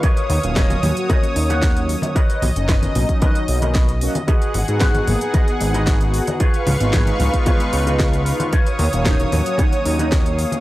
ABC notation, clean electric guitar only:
X:1
M:4/4
L:1/16
Q:1/4=113
K:Ebm
V:1 name="Clean electric guitar"
[GBde]2 z2 [GBde]2 z2 [GBde] z2 [GBdg]2 z3 | [^F^A=B^d]2 z2 [FABd]2 z2 [FABd] z2 [FABd]2 z3 | [GAce]2 z2 [GAcg]2 z2 [GAce] z2 [GAce]2 z3 | [FAcd]2 z2 [FAcd]2 z2 [FAcd] z2 [FAce]2 z3 |
[EGBd]2 z2 [EGBd]2 z2 [EGBd] z2 [EGBe]2 z3 |]